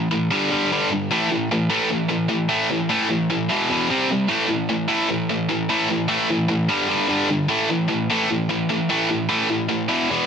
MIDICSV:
0, 0, Header, 1, 2, 480
1, 0, Start_track
1, 0, Key_signature, 0, "minor"
1, 0, Tempo, 400267
1, 1310, Time_signature, 4, 2, 24, 8
1, 12309, End_track
2, 0, Start_track
2, 0, Title_t, "Distorted electric guitar"
2, 0, Program_c, 0, 30
2, 132, Note_on_c, 0, 45, 78
2, 134, Note_on_c, 0, 52, 80
2, 336, Note_off_c, 0, 45, 0
2, 337, Note_off_c, 0, 52, 0
2, 368, Note_on_c, 0, 43, 90
2, 379, Note_on_c, 0, 50, 97
2, 380, Note_on_c, 0, 55, 86
2, 584, Note_off_c, 0, 43, 0
2, 589, Note_off_c, 0, 50, 0
2, 590, Note_off_c, 0, 55, 0
2, 607, Note_on_c, 0, 43, 83
2, 615, Note_on_c, 0, 50, 93
2, 621, Note_on_c, 0, 55, 101
2, 823, Note_off_c, 0, 43, 0
2, 828, Note_off_c, 0, 50, 0
2, 831, Note_off_c, 0, 55, 0
2, 859, Note_on_c, 0, 43, 92
2, 863, Note_on_c, 0, 55, 102
2, 864, Note_on_c, 0, 50, 95
2, 1070, Note_off_c, 0, 43, 0
2, 1072, Note_off_c, 0, 50, 0
2, 1072, Note_off_c, 0, 55, 0
2, 1091, Note_on_c, 0, 43, 69
2, 1097, Note_on_c, 0, 50, 73
2, 1296, Note_off_c, 0, 43, 0
2, 1299, Note_off_c, 0, 50, 0
2, 1329, Note_on_c, 0, 45, 81
2, 1332, Note_on_c, 0, 52, 97
2, 1342, Note_on_c, 0, 57, 93
2, 1545, Note_off_c, 0, 45, 0
2, 1547, Note_off_c, 0, 52, 0
2, 1551, Note_off_c, 0, 57, 0
2, 1572, Note_on_c, 0, 45, 73
2, 1573, Note_on_c, 0, 52, 88
2, 1777, Note_off_c, 0, 45, 0
2, 1777, Note_off_c, 0, 52, 0
2, 1814, Note_on_c, 0, 45, 73
2, 1823, Note_on_c, 0, 52, 83
2, 2018, Note_off_c, 0, 45, 0
2, 2023, Note_off_c, 0, 52, 0
2, 2036, Note_on_c, 0, 45, 90
2, 2038, Note_on_c, 0, 52, 97
2, 2042, Note_on_c, 0, 57, 101
2, 2259, Note_off_c, 0, 45, 0
2, 2260, Note_off_c, 0, 52, 0
2, 2262, Note_off_c, 0, 57, 0
2, 2280, Note_on_c, 0, 45, 64
2, 2280, Note_on_c, 0, 52, 71
2, 2491, Note_off_c, 0, 52, 0
2, 2492, Note_off_c, 0, 45, 0
2, 2510, Note_on_c, 0, 45, 64
2, 2519, Note_on_c, 0, 52, 79
2, 2726, Note_off_c, 0, 45, 0
2, 2731, Note_off_c, 0, 52, 0
2, 2746, Note_on_c, 0, 45, 78
2, 2752, Note_on_c, 0, 52, 79
2, 2965, Note_off_c, 0, 45, 0
2, 2968, Note_off_c, 0, 52, 0
2, 2985, Note_on_c, 0, 52, 85
2, 2986, Note_on_c, 0, 45, 90
2, 2995, Note_on_c, 0, 57, 92
2, 3214, Note_off_c, 0, 52, 0
2, 3215, Note_off_c, 0, 45, 0
2, 3219, Note_off_c, 0, 57, 0
2, 3230, Note_on_c, 0, 45, 68
2, 3243, Note_on_c, 0, 52, 87
2, 3447, Note_off_c, 0, 45, 0
2, 3453, Note_off_c, 0, 52, 0
2, 3469, Note_on_c, 0, 45, 83
2, 3479, Note_on_c, 0, 52, 85
2, 3481, Note_on_c, 0, 57, 93
2, 3688, Note_off_c, 0, 45, 0
2, 3696, Note_off_c, 0, 52, 0
2, 3702, Note_off_c, 0, 57, 0
2, 3703, Note_on_c, 0, 45, 77
2, 3710, Note_on_c, 0, 52, 80
2, 3923, Note_off_c, 0, 45, 0
2, 3927, Note_off_c, 0, 52, 0
2, 3955, Note_on_c, 0, 45, 78
2, 3960, Note_on_c, 0, 52, 71
2, 4170, Note_off_c, 0, 45, 0
2, 4172, Note_off_c, 0, 52, 0
2, 4191, Note_on_c, 0, 40, 79
2, 4203, Note_on_c, 0, 47, 82
2, 4203, Note_on_c, 0, 52, 92
2, 4417, Note_off_c, 0, 40, 0
2, 4423, Note_off_c, 0, 47, 0
2, 4423, Note_off_c, 0, 52, 0
2, 4440, Note_on_c, 0, 40, 77
2, 4449, Note_on_c, 0, 47, 95
2, 4457, Note_on_c, 0, 52, 84
2, 4662, Note_off_c, 0, 40, 0
2, 4666, Note_off_c, 0, 47, 0
2, 4671, Note_off_c, 0, 52, 0
2, 4674, Note_on_c, 0, 48, 86
2, 4680, Note_on_c, 0, 55, 88
2, 4688, Note_on_c, 0, 60, 86
2, 4899, Note_off_c, 0, 48, 0
2, 4902, Note_off_c, 0, 55, 0
2, 4906, Note_off_c, 0, 60, 0
2, 4921, Note_on_c, 0, 48, 67
2, 4937, Note_on_c, 0, 55, 66
2, 5133, Note_off_c, 0, 48, 0
2, 5139, Note_on_c, 0, 45, 87
2, 5141, Note_off_c, 0, 55, 0
2, 5150, Note_on_c, 0, 57, 98
2, 5154, Note_on_c, 0, 52, 98
2, 5363, Note_off_c, 0, 45, 0
2, 5363, Note_off_c, 0, 52, 0
2, 5377, Note_off_c, 0, 57, 0
2, 5377, Note_on_c, 0, 45, 75
2, 5377, Note_on_c, 0, 52, 79
2, 5601, Note_off_c, 0, 45, 0
2, 5601, Note_off_c, 0, 52, 0
2, 5627, Note_on_c, 0, 45, 71
2, 5630, Note_on_c, 0, 52, 79
2, 5840, Note_off_c, 0, 45, 0
2, 5847, Note_off_c, 0, 52, 0
2, 5855, Note_on_c, 0, 45, 90
2, 5869, Note_on_c, 0, 52, 87
2, 5870, Note_on_c, 0, 57, 91
2, 6089, Note_off_c, 0, 45, 0
2, 6093, Note_off_c, 0, 52, 0
2, 6097, Note_off_c, 0, 57, 0
2, 6107, Note_on_c, 0, 52, 83
2, 6113, Note_on_c, 0, 45, 72
2, 6326, Note_off_c, 0, 52, 0
2, 6329, Note_off_c, 0, 45, 0
2, 6351, Note_on_c, 0, 52, 68
2, 6353, Note_on_c, 0, 45, 66
2, 6568, Note_off_c, 0, 52, 0
2, 6569, Note_off_c, 0, 45, 0
2, 6583, Note_on_c, 0, 45, 80
2, 6598, Note_on_c, 0, 52, 81
2, 6804, Note_off_c, 0, 45, 0
2, 6812, Note_off_c, 0, 52, 0
2, 6828, Note_on_c, 0, 45, 80
2, 6835, Note_on_c, 0, 52, 99
2, 6844, Note_on_c, 0, 57, 99
2, 7056, Note_off_c, 0, 45, 0
2, 7060, Note_off_c, 0, 52, 0
2, 7064, Note_off_c, 0, 57, 0
2, 7072, Note_on_c, 0, 45, 80
2, 7078, Note_on_c, 0, 52, 85
2, 7279, Note_off_c, 0, 45, 0
2, 7285, Note_off_c, 0, 52, 0
2, 7294, Note_on_c, 0, 45, 82
2, 7299, Note_on_c, 0, 52, 97
2, 7306, Note_on_c, 0, 57, 102
2, 7529, Note_off_c, 0, 45, 0
2, 7532, Note_off_c, 0, 52, 0
2, 7535, Note_off_c, 0, 57, 0
2, 7548, Note_on_c, 0, 45, 78
2, 7556, Note_on_c, 0, 52, 86
2, 7762, Note_off_c, 0, 52, 0
2, 7766, Note_off_c, 0, 45, 0
2, 7777, Note_on_c, 0, 52, 75
2, 7783, Note_on_c, 0, 45, 69
2, 8001, Note_off_c, 0, 52, 0
2, 8004, Note_off_c, 0, 45, 0
2, 8021, Note_on_c, 0, 43, 87
2, 8030, Note_on_c, 0, 55, 101
2, 8031, Note_on_c, 0, 50, 87
2, 8242, Note_off_c, 0, 50, 0
2, 8248, Note_off_c, 0, 43, 0
2, 8252, Note_off_c, 0, 55, 0
2, 8256, Note_on_c, 0, 50, 98
2, 8262, Note_on_c, 0, 43, 93
2, 8267, Note_on_c, 0, 55, 109
2, 8480, Note_off_c, 0, 43, 0
2, 8485, Note_off_c, 0, 50, 0
2, 8489, Note_off_c, 0, 55, 0
2, 8495, Note_on_c, 0, 43, 94
2, 8499, Note_on_c, 0, 50, 100
2, 8503, Note_on_c, 0, 55, 95
2, 8729, Note_off_c, 0, 43, 0
2, 8731, Note_off_c, 0, 50, 0
2, 8733, Note_off_c, 0, 55, 0
2, 8754, Note_on_c, 0, 50, 79
2, 8755, Note_on_c, 0, 43, 77
2, 8969, Note_off_c, 0, 50, 0
2, 8970, Note_off_c, 0, 43, 0
2, 8976, Note_on_c, 0, 45, 88
2, 8982, Note_on_c, 0, 52, 95
2, 8989, Note_on_c, 0, 57, 95
2, 9209, Note_off_c, 0, 45, 0
2, 9212, Note_off_c, 0, 52, 0
2, 9216, Note_off_c, 0, 57, 0
2, 9224, Note_on_c, 0, 45, 80
2, 9232, Note_on_c, 0, 52, 87
2, 9435, Note_off_c, 0, 45, 0
2, 9442, Note_off_c, 0, 52, 0
2, 9449, Note_on_c, 0, 45, 80
2, 9457, Note_on_c, 0, 52, 82
2, 9676, Note_off_c, 0, 45, 0
2, 9680, Note_off_c, 0, 52, 0
2, 9711, Note_on_c, 0, 45, 90
2, 9724, Note_on_c, 0, 52, 92
2, 9727, Note_on_c, 0, 57, 107
2, 9937, Note_off_c, 0, 45, 0
2, 9943, Note_off_c, 0, 52, 0
2, 9945, Note_off_c, 0, 57, 0
2, 9952, Note_on_c, 0, 45, 72
2, 9959, Note_on_c, 0, 52, 76
2, 10167, Note_off_c, 0, 45, 0
2, 10171, Note_off_c, 0, 52, 0
2, 10183, Note_on_c, 0, 45, 69
2, 10197, Note_on_c, 0, 52, 81
2, 10403, Note_off_c, 0, 45, 0
2, 10410, Note_off_c, 0, 52, 0
2, 10425, Note_on_c, 0, 45, 78
2, 10431, Note_on_c, 0, 52, 90
2, 10643, Note_off_c, 0, 45, 0
2, 10647, Note_off_c, 0, 52, 0
2, 10664, Note_on_c, 0, 45, 90
2, 10671, Note_on_c, 0, 52, 97
2, 10673, Note_on_c, 0, 57, 92
2, 10887, Note_off_c, 0, 45, 0
2, 10896, Note_off_c, 0, 52, 0
2, 10897, Note_off_c, 0, 57, 0
2, 10902, Note_on_c, 0, 45, 74
2, 10912, Note_on_c, 0, 52, 81
2, 11122, Note_off_c, 0, 45, 0
2, 11127, Note_off_c, 0, 52, 0
2, 11138, Note_on_c, 0, 45, 89
2, 11140, Note_on_c, 0, 52, 92
2, 11146, Note_on_c, 0, 57, 92
2, 11369, Note_off_c, 0, 45, 0
2, 11370, Note_off_c, 0, 52, 0
2, 11373, Note_off_c, 0, 57, 0
2, 11391, Note_on_c, 0, 45, 75
2, 11391, Note_on_c, 0, 52, 83
2, 11604, Note_off_c, 0, 45, 0
2, 11606, Note_off_c, 0, 52, 0
2, 11618, Note_on_c, 0, 45, 76
2, 11620, Note_on_c, 0, 52, 80
2, 11839, Note_off_c, 0, 45, 0
2, 11840, Note_off_c, 0, 52, 0
2, 11855, Note_on_c, 0, 40, 83
2, 11863, Note_on_c, 0, 52, 86
2, 11864, Note_on_c, 0, 47, 82
2, 12087, Note_off_c, 0, 40, 0
2, 12091, Note_off_c, 0, 52, 0
2, 12092, Note_off_c, 0, 47, 0
2, 12116, Note_on_c, 0, 40, 80
2, 12124, Note_on_c, 0, 47, 83
2, 12124, Note_on_c, 0, 52, 95
2, 12309, Note_off_c, 0, 40, 0
2, 12309, Note_off_c, 0, 47, 0
2, 12309, Note_off_c, 0, 52, 0
2, 12309, End_track
0, 0, End_of_file